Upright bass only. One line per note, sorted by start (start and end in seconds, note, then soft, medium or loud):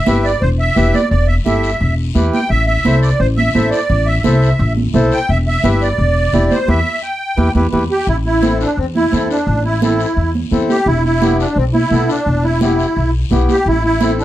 0.07 0.35 G1 medium
0.42 0.70 E1 medium
0.76 0.90 E1 medium
1.11 1.39 E1 medium
1.46 1.74 G1 medium
1.81 2.09 E1 medium
2.15 2.29 E2 medium
2.50 2.78 A1 medium
2.85 3.13 C2 medium
3.20 3.48 A1 medium
3.55 3.69 A1 medium
3.90 4.18 A1 medium
4.25 4.53 C2 medium
4.59 4.87 A1 loud
4.94 5.08 B1 medium
5.29 5.57 E1 medium
5.64 5.92 G1 medium
5.98 6.26 E1 medium
6.33 6.47 E1 medium
6.68 6.81 E2 medium
7.37 7.51 E2 medium
7.55 7.68 E2 medium
7.73 7.86 E2 medium
8.07 8.63 A1 medium
8.77 9.05 E2 medium
9.12 9.26 E2 medium
9.47 10.03 A1 medium
10.17 10.45 E2 medium
10.51 10.66 E2 medium
10.86 11.42 E1 medium
11.56 11.84 B1 medium
11.91 12.05 B1 medium
12.26 12.82 E1 medium
12.97 13.24 B1 medium
13.31 13.45 B1 medium
13.66 14.22 A1 medium